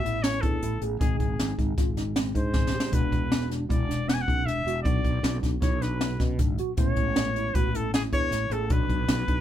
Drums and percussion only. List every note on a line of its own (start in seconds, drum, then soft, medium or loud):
0.05 closed hi-hat medium
0.24 snare loud
0.24 closed hi-hat medium
0.43 kick medium
0.43 closed hi-hat medium
0.62 closed hi-hat medium
0.82 closed hi-hat medium
1.01 kick loud
1.01 closed hi-hat medium
1.20 kick medium
1.20 closed hi-hat soft
1.39 snare loud
1.39 closed hi-hat medium
1.59 kick medium
1.59 closed hi-hat medium
1.78 kick loud
1.78 snare soft
1.78 closed hi-hat medium
1.97 snare soft
1.97 closed hi-hat medium
2.16 snare loud
2.16 closed hi-hat medium
2.35 kick medium
2.35 closed hi-hat medium
2.54 kick loud
2.54 snare medium
2.67 snare medium
2.80 snare medium
2.92 kick loud
2.92 closed hi-hat medium
3.12 kick medium
3.12 closed hi-hat medium
3.32 snare loud
3.32 closed hi-hat medium
3.51 snare soft
3.51 closed hi-hat medium
3.70 kick loud
3.70 closed hi-hat medium
3.91 snare soft
3.91 closed hi-hat medium
4.09 snare loud
4.09 closed hi-hat medium
4.28 kick medium
4.28 closed hi-hat medium
4.48 closed hi-hat medium
4.67 closed hi-hat medium
4.85 kick loud
4.85 closed hi-hat medium
5.05 kick medium
5.05 closed hi-hat medium
5.24 snare loud
5.24 closed hi-hat medium
5.43 kick medium
5.43 snare soft
5.43 closed hi-hat medium
5.62 kick loud
5.62 snare soft
5.62 closed hi-hat medium
5.82 snare soft
5.82 closed hi-hat medium
6.01 snare loud
6.01 closed hi-hat medium
6.20 kick medium
6.20 snare soft
6.20 closed hi-hat medium
6.39 kick loud
6.39 snare soft
6.39 closed hi-hat medium
6.58 closed hi-hat medium
6.77 kick loud
6.77 closed hi-hat medium
6.96 kick medium
6.96 closed hi-hat medium
7.16 snare loud
7.16 closed hi-hat medium
7.36 closed hi-hat medium
7.55 kick loud
7.55 closed hi-hat medium
7.75 closed hi-hat medium
7.94 snare loud
7.94 closed hi-hat medium
8.12 kick medium
8.12 closed hi-hat medium
8.32 snare soft
8.32 closed hi-hat medium
8.51 closed hi-hat medium
8.70 kick loud
8.70 closed hi-hat medium
8.90 kick medium
8.90 closed hi-hat medium
9.08 snare loud
9.08 closed hi-hat medium
9.28 kick medium
9.28 closed hi-hat medium